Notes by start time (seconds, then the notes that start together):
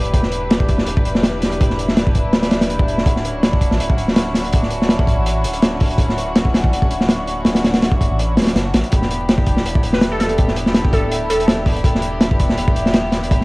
Already playing: E1 D4 E4 G4 B4
0.04 closed hi-hat
0.14 E1, kick, closed hi-hat
0.23 snare
0.32 closed hi-hat
0.51 snare, closed hi-hat
0.60 kick
0.69 kick, closed hi-hat
0.78 D1, snare
0.86 E1, closed hi-hat
0.97 kick
1.05 E1, closed hi-hat
1.15 snare
1.23 snare, closed hi-hat
1.42 snare, closed hi-hat
1.52 closed hi-hat
1.61 E1, kick, closed hi-hat
1.70 snare
1.79 closed hi-hat
1.89 snare
1.97 snare, closed hi-hat
2.07 kick
2.15 kick, closed hi-hat
2.25 D1
2.33 snare, closed hi-hat
2.43 snare, closed hi-hat
2.51 E1, snare, closed hi-hat
2.61 snare, closed hi-hat
2.70 closed hi-hat
2.79 kick
2.88 closed hi-hat
2.98 snare
3.06 D1 C#4 F#4, kick, closed hi-hat
3.16 snare
3.25 closed hi-hat
3.43 snare, closed hi-hat
3.53 kick
3.61 kick, closed hi-hat
3.71 A1, snare
3.80 D1, closed hi-hat
3.90 kick
3.98 D1, closed hi-hat
4.08 snare
4.16 snare, closed hi-hat
4.34 snare, closed hi-hat
4.44 closed hi-hat
4.52 D1, kick, closed hi-hat
4.63 snare
4.70 closed hi-hat
4.82 snare
4.89 snare, closed hi-hat
4.99 kick
5.07 kick, closed hi-hat
5.18 A1
5.26 closed hi-hat
5.44 D1, closed hi-hat
5.53 closed hi-hat
5.62 snare, closed hi-hat
5.80 kick, open hi-hat
5.90 closed hi-hat
5.98 D1, kick, closed hi-hat
6.09 snare
6.18 closed hi-hat
6.36 snare, closed hi-hat
6.45 kick
6.54 snare, closed hi-hat
6.64 A1, kick
6.72 D1, closed hi-hat
6.82 kick
6.91 D1, closed hi-hat
7.01 snare
7.09 snare, closed hi-hat
7.27 closed hi-hat
7.45 D1, snare, closed hi-hat
7.55 snare, closed hi-hat
7.64 snare, closed hi-hat
7.74 snare, closed hi-hat
7.82 snare, closed hi-hat
7.91 kick
8.01 kick, closed hi-hat
8.10 A1
8.19 closed hi-hat
8.37 D1, snare, closed hi-hat
8.42 snare, closed hi-hat
8.46 snare, closed hi-hat
8.55 F#1, snare, closed hi-hat
8.74 A1, snare, closed hi-hat
8.84 closed hi-hat
8.92 E1 B3 D4 E4 G4, kick, closed hi-hat
9.02 snare
9.11 closed hi-hat
9.29 snare, closed hi-hat
9.38 kick
9.46 kick, closed hi-hat
9.57 D1, snare
9.65 E1, closed hi-hat
9.75 kick
9.83 E1, closed hi-hat
9.93 B4, snare
10.01 snare, closed hi-hat
10.12 A4
10.20 A4, snare, closed hi-hat
10.29 closed hi-hat
10.38 E1, kick, closed hi-hat
10.48 snare
10.56 closed hi-hat
10.66 snare
10.74 snare, closed hi-hat
10.85 kick
10.93 A4, kick, closed hi-hat
11.03 D1
11.12 closed hi-hat
11.30 E1 A4, closed hi-hat
11.40 closed hi-hat
11.48 snare, closed hi-hat
11.66 kick, open hi-hat
11.76 closed hi-hat
11.84 E1, kick, closed hi-hat
11.95 snare
12.02 closed hi-hat
12.21 snare, closed hi-hat
12.31 kick
12.39 kick, closed hi-hat
12.49 D1, snare
12.58 E1, closed hi-hat
12.68 kick
12.76 E1, closed hi-hat
12.86 snare
12.94 snare, closed hi-hat
13.12 snare, closed hi-hat
13.23 closed hi-hat
13.31 E1, kick, closed hi-hat
13.41 snare